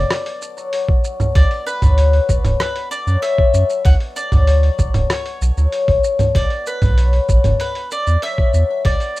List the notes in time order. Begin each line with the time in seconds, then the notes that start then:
Already playing: D3 D5
0.10 B2, cross-stick, open hi-hat, shaker
0.26 open hi-hat
0.41 D3, shaker
0.57 F#3, shaker
0.73 F#3, open hi-hat, shaker
0.89 kick
1.04 F#3, shaker
1.19 D3, low conga, shaker
1.35 D2 B2 D5, kick, open hi-hat, shaker
1.51 open hi-hat
1.66 D3 B4, shaker
1.82 D2 F#3, kick, open hi-hat, low conga, shaker
1.98 F#3, open hi-hat, shaker
2.13 open hi-hat
2.29 B1 F#3, kick, shaker
2.44 D1 D3, open hi-hat, low conga, shaker
2.60 B2 B4, cross-stick, open hi-hat, shaker
2.76 open hi-hat
2.91 D3 D5, shaker
3.07 F#2 F#3, shaker
3.22 F#3 E5, open hi-hat, shaker
3.38 kick
3.54 F#2 F#3, shaker
3.69 D3, shaker
3.85 D2 B2 F#5, kick, open hi-hat, shaker
4.00 open hi-hat
4.16 D3 D5, shaker
4.31 D2 F#3, kick, open hi-hat, low conga, shaker
4.47 F#3, open hi-hat, shaker
4.63 open hi-hat
4.78 B1 F#3, kick, shaker
4.94 D1 D3, open hi-hat, low conga, shaker
5.10 B2 C#5, cross-stick, open hi-hat, shaker
5.26 open hi-hat
5.41 B1 D3, shaker
5.57 D2 F#3, shaker
5.72 F#3, open hi-hat, shaker
5.88 B1, kick, open hi-hat
6.04 F#3, shaker
6.19 D3, open hi-hat, low conga, shaker
6.35 B1 B2 D5, kick, open hi-hat, shaker
6.50 open hi-hat
6.66 D3 B4, shaker
6.82 B1 B4, kick, open hi-hat, low conga, shaker
6.97 F#3, open hi-hat, shaker
7.13 open hi-hat
7.29 A1 F#3, kick, shaker
7.44 F#1 D3, open hi-hat, low conga, shaker
7.60 B2 B4, open hi-hat, shaker
7.75 open hi-hat
7.91 D3 D5, shaker
8.07 E2 B4, shaker
8.22 F#3 E5, open hi-hat, shaker
8.38 kick
8.54 E2 F#3, shaker
8.70 D3
8.85 B1 B2 D5, kick, open hi-hat
9.00 open hi-hat, shaker
9.16 D3, shaker